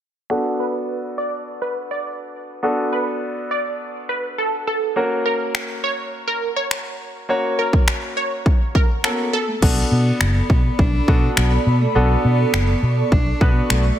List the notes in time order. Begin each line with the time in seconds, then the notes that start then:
0.30 B3 D4 F#4 A4
0.60 B4
1.18 D5
1.62 B4
1.91 D5
2.63 B3 D4 F#4 A4
2.93 B4
3.51 D5
4.09 B4
4.38 A4
4.67 A4
4.96 A#3 C#4 F#4 A#4
5.26 A#4
5.55 finger snap
5.84 C#5
6.28 A#4
6.56 C#5
6.71 finger snap
7.29 A#3 C#4 F#4 C#5
7.59 A#4
7.73 kick
7.88 finger snap
8.17 C#5
8.46 kick
8.75 A#4, kick
9.04 A#3 B3 C#4 F#4 A4 A#4, finger snap
9.33 A4
9.48 A3
9.62 B1 B3 D4 F#4 A4 D5 B5, kick, crash
9.92 B2
10.21 F#1, finger snap
10.50 B2, kick
10.79 B1 D4, kick
11.08 B2 B3 D4 F#4 A4, kick
11.37 B1 B3, finger snap
11.67 B2
11.81 A3
11.95 B1 B3 D4 F#4 A4 C#6
12.25 B2
12.54 F#1, finger snap
12.83 B2
13.12 B1 D4, kick
13.41 B2 B3 D4 F#4 B4, kick
13.70 B1 A3, finger snap